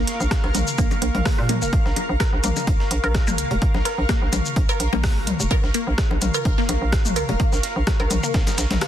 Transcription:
0.00 8.88 A#4 medium
0.00 8.88 F5 medium
0.00 8.88 C#6 medium
0.07 snare soft
0.07 closed hi-hat loud
0.07 closed hi-hat medium
0.20 0.27 A#1 loud
0.20 shaker soft
0.31 kick loud
0.31 cross-stick medium
0.31 snare loud
0.31 closed hi-hat medium
0.31 low bongo soft
0.44 0.51 A#1 loud
0.44 cowbell medium
0.55 0.63 A#1 medium
0.55 0.59 A#3 medium
0.55 closed hi-hat loud
0.55 closed hi-hat medium
0.55 mid tom medium
0.55 shaker soft
0.67 shaker soft
0.78 0.86 A#1 loud
0.78 0.82 A#3 loud
0.78 kick loud
0.78 closed hi-hat medium
0.78 shaker soft
0.91 closed hi-hat soft
0.91 low bongo soft
0.91 shaker soft
1.02 1.10 A#1 medium
1.02 1.06 A#3 medium
1.02 closed hi-hat loud
1.02 closed hi-hat medium
1.15 1.22 A#1 medium
1.15 closed hi-hat soft
1.15 mid tom medium
1.25 1.32 A#3 medium
1.25 kick loud
1.25 cross-stick loud
1.25 snare loud
1.25 open hi-hat medium
1.25 cowbell medium
1.38 1.63 A#2 loud
1.49 1.53 A#3 loud
1.49 closed hi-hat medium
1.49 mid tom medium
1.49 low bongo soft
1.62 1.69 F1 medium
1.62 1.65 A#3 medium
1.62 shaker soft
1.73 kick loud
1.73 closed hi-hat medium
1.86 1.92 A#1 loud
1.86 snare soft
1.96 closed hi-hat medium
1.96 low bongo soft
2.09 2.16 A#1 loud
2.20 2.24 A#4 loud
2.20 kick loud
2.20 cross-stick medium
2.20 snare loud
2.20 closed hi-hat medium
2.20 cowbell medium
2.33 2.40 A#1 loud
2.44 2.52 A#1 medium
2.44 2.48 A#3 loud
2.44 closed hi-hat medium
2.44 mid tom medium
2.44 shaker soft
2.56 low bongo soft
2.56 shaker soft
2.67 2.75 A#1 loud
2.67 kick loud
2.67 closed hi-hat medium
2.80 snare medium
2.91 2.99 A#1 loud
2.91 closed hi-hat medium
3.04 3.40 A#1 medium
3.04 3.07 A#4 loud
3.04 cowbell medium
3.15 kick loud
3.15 cross-stick medium
3.15 snare loud
3.15 closed hi-hat medium
3.15 low bongo soft
3.27 3.31 A#3 loud
3.27 mid tom medium
3.27 shaker soft
3.38 3.46 C#2 loud
3.38 closed hi-hat medium
3.38 shaker soft
3.51 3.58 F1 loud
3.51 closed hi-hat soft
3.62 kick loud
3.62 closed hi-hat medium
3.74 3.81 A#1 loud
3.74 snare soft
3.74 low bongo soft
3.85 3.90 A#4 loud
3.85 snare soft
3.85 closed hi-hat medium
3.85 cowbell medium
3.98 4.05 A#1 loud
4.09 4.13 A#3 loud
4.09 kick loud
4.09 cross-stick medium
4.09 snare loud
4.09 closed hi-hat medium
4.22 4.29 A#1 loud
4.33 4.41 A#1 loud
4.33 closed hi-hat medium
4.33 mid tom medium
4.33 low bongo soft
4.33 shaker soft
4.46 shaker soft
4.56 4.64 A#1 loud
4.56 kick loud
4.56 closed hi-hat medium
4.69 4.73 A#4 loud
4.69 closed hi-hat soft
4.69 cowbell medium
4.69 shaker soft
4.80 4.88 A#1 medium
4.80 closed hi-hat medium
4.93 5.29 A#1 medium
4.93 4.96 A#3 loud
4.93 closed hi-hat soft
4.93 mid tom medium
4.93 low bongo soft
5.04 kick loud
5.04 cross-stick medium
5.04 snare loud
5.04 open hi-hat medium
5.27 5.35 C#2 loud
5.27 closed hi-hat medium
5.27 mid tom medium
5.40 5.47 F1 medium
5.40 shaker soft
5.51 5.55 A#4 loud
5.51 kick loud
5.51 closed hi-hat medium
5.51 cowbell medium
5.51 low bongo soft
5.64 5.70 A#1 medium
5.64 snare soft
5.74 5.79 A#3 loud
5.74 closed hi-hat medium
5.87 5.94 A#1 loud
5.98 kick loud
5.98 cross-stick medium
5.98 snare loud
5.98 closed hi-hat medium
6.11 6.18 A#1 loud
6.11 low bongo soft
6.22 6.30 A#1 medium
6.22 closed hi-hat medium
6.22 mid tom medium
6.22 shaker soft
6.34 6.38 A#4 loud
6.34 cowbell medium
6.34 shaker soft
6.45 6.53 A#1 loud
6.45 kick loud
6.45 closed hi-hat medium
6.58 6.62 A#3 loud
6.58 snare medium
6.69 6.77 A#1 loud
6.69 closed hi-hat medium
6.69 low bongo soft
6.82 7.18 A#1 medium
6.92 kick loud
6.92 cross-stick medium
6.92 snare loud
6.92 closed hi-hat medium
7.05 mid tom medium
7.05 shaker soft
7.16 7.24 C#2 loud
7.16 7.20 A#4 loud
7.16 closed hi-hat medium
7.16 cowbell medium
7.16 shaker soft
7.29 7.36 F1 loud
7.29 closed hi-hat soft
7.29 low bongo soft
7.40 7.44 A#3 loud
7.40 kick loud
7.40 closed hi-hat medium
7.53 7.59 A#1 loud
7.53 snare soft
7.53 shaker soft
7.63 snare soft
7.63 closed hi-hat medium
7.76 7.83 A#1 loud
7.87 kick loud
7.87 cross-stick medium
7.87 snare loud
7.87 closed hi-hat medium
7.87 low bongo soft
8.00 8.07 A#1 loud
8.00 8.03 A#4 loud
8.00 cowbell medium
8.11 8.19 A#1 loud
8.11 closed hi-hat medium
8.11 mid tom medium
8.11 shaker soft
8.23 8.27 A#3 loud
8.23 shaker soft
8.34 8.42 A#1 loud
8.34 kick loud
8.34 snare loud
8.34 closed hi-hat medium
8.47 snare loud
8.47 closed hi-hat medium
8.47 low bongo soft
8.47 shaker soft
8.58 8.66 A#1 loud
8.58 snare loud
8.58 closed hi-hat medium
8.58 shaker soft
8.71 8.77 A#1 medium
8.71 snare loud
8.71 closed hi-hat medium
8.71 mid tom medium
8.81 cross-stick loud
8.81 snare loud
8.81 closed hi-hat medium
8.81 cowbell medium

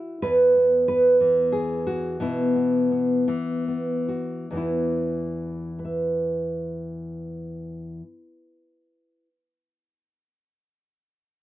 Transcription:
0.00 0.24 E4 medium
0.00 0.23 F#4 medium
0.22 2.20 E2 medium
0.22 0.87 B4 medium
0.56 1.21 B3 soft
0.88 1.52 B4 medium
1.21 2.20 E3 soft
1.21 1.86 B3 soft
1.52 2.20 G#4 medium
1.87 2.20 F#4 medium
2.20 3.28 B2 medium
2.20 3.27 E3 soft
2.20 2.55 B3 soft
2.20 4.08 E4 medium
2.56 2.90 B3 soft
2.91 3.27 B3 soft
3.28 4.51 E3 soft
3.28 3.67 B3 soft
3.68 4.45 B3 soft
4.09 4.45 F#4 soft
4.51 8.01 E2 soft
4.51 8.02 E3 soft
4.55 8.05 B3 soft
4.55 5.70 E4 medium
5.79 9.22 B4 soft
5.85 9.27 E5 soft

